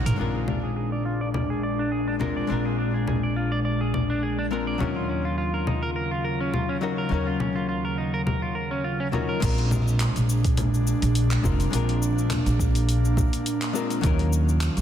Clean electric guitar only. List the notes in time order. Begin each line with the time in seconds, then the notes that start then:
0.06 A#4
0.19 D4
0.34 G#4
0.48 D4
0.63 G#4
0.76 G#4
0.92 D5
1.05 F4
1.21 D5
1.34 D5
1.50 G#4
1.63 D5
1.79 D4
1.92 G#4
2.08 D4
2.21 A#4
2.37 D5
2.49 D4
2.65 G#4
2.78 D4
2.94 G#4
3.07 G#4
3.23 D5
3.36 F4
3.52 D5
3.65 D5
3.81 G#4
3.94 D5
4.10 D4
4.23 G#4
4.39 D4
4.52 A#4
4.67 D5
4.80 C#4
4.96 F4
5.09 C#4
5.25 F4
5.38 F4
5.54 A#4
5.67 D#4
5.82 A#4
5.96 A#4
6.11 F4
6.24 A#4
6.41 C#4
6.54 F4
6.69 C#4
6.83 F#4
6.98 A#4
7.11 C#4
7.27 F4
7.40 C#4
7.56 F4
7.69 F4
7.85 A#4
7.98 D#4
8.14 A#4
8.26 A#4
8.42 F4
8.55 A#4
8.71 C#4
8.84 F4
9.00 C#4
9.13 F#4
9.29 A#4